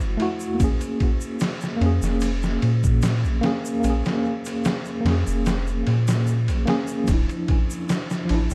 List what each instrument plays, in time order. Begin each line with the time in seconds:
Already playing: tine electric piano A3 E4 F#4
0.00 sub bass F#1, shaker
0.17 tine electric piano A3 E4, ride
0.22 tine electric piano F#4
0.40 shaker
0.54 tine electric piano A#3
0.59 sub bass A#1, tine electric piano C#4, kick, ride, shaker
0.64 tine electric piano G#4
0.81 ride, shaker
1.00 kick, ride
1.21 shaker
1.40 snare, ride, shaker
1.61 snare, shaker
1.76 tine electric piano A#3
1.81 sub bass F2, tine electric piano C#4, ride
1.86 tine electric piano G#4
2.02 sub bass F1, snare, shaker
2.21 ride, shaker
2.42 snare, shaker
2.62 sub bass A#2, ride
2.84 kick, shaker
3.02 snare, ride, shaker
3.24 sub bass A#1, shaker
3.41 tine electric piano A#3 C#4, snare, ride
3.46 tine electric piano G#4
3.65 shaker
3.80 tine electric piano A#3, shaker
3.84 sub bass A#1, tine electric piano C#4, ride
3.90 tine electric piano G#4
4.05 snare, ride, shaker
4.45 ride, shaker
4.65 snare, ride, shaker
4.85 shaker
5.01 tine electric piano A#3
5.05 sub bass F2, tine electric piano C#4, snare, ride
5.10 tine electric piano G#4
5.27 sub bass F1, shaker
5.46 snare, ride, shaker
5.67 shaker
5.87 sub bass A#2, ride
6.08 snare, ride, shaker
6.27 shaker
6.48 sub bass A#1, ride, shaker
6.65 tine electric piano A#3 C#4, snare, ride
6.70 tine electric piano G#4
6.87 shaker
7.04 tine electric piano F3, ride, shaker
7.08 sub bass D1, tine electric piano D4, kick
7.13 tine electric piano E4
7.29 ride, shaker
7.48 kick, ride
7.70 shaker
7.89 snare, ride, shaker
8.10 snare, shaker
8.25 tine electric piano F3
8.29 sub bass A1, tine electric piano D4, ride
8.35 tine electric piano E4
8.50 shaker